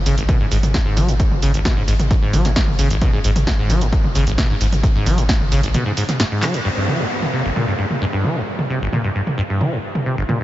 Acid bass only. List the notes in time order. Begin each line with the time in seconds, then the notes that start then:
0.06 C#3
0.18 G#1
0.29 B2
0.40 G#2
0.52 G#2
0.74 G#2
0.86 G#2
0.97 F#3
1.08 G#2
1.42 C#3
1.54 G#1
1.65 B2
1.77 G#2
1.88 G#2
2.11 G#2
2.22 G#2
2.33 F#3
2.45 G#2
2.79 C#3
2.91 G#1
3.02 B2
3.13 G#2
3.24 G#2
3.47 G#2
3.59 G#2
3.70 F#3
3.81 G#2
4.15 C#3
4.27 G#1
4.38 B2
4.50 G#2
4.61 G#2
4.84 G#2
4.95 G#2
5.06 F#3
5.18 G#2
5.52 C#3
5.63 G#1
5.74 B2
5.86 G#2
5.97 G#2
6.20 G#2
6.31 G#2
6.42 F#3
6.54 G#2
6.65 G2
6.77 G2
6.88 F3
6.99 G2
7.33 C3
7.45 G1
7.56 A#2
7.67 G2
7.79 G2
8.01 G2
8.13 G2
8.24 F3
8.36 G2
8.70 C3
8.81 G1
8.93 A#2
9.04 G2
9.15 G2
9.38 G2
9.49 G2
9.61 F3
9.72 G2
10.06 C3
10.18 G1
10.29 A#2
10.40 G2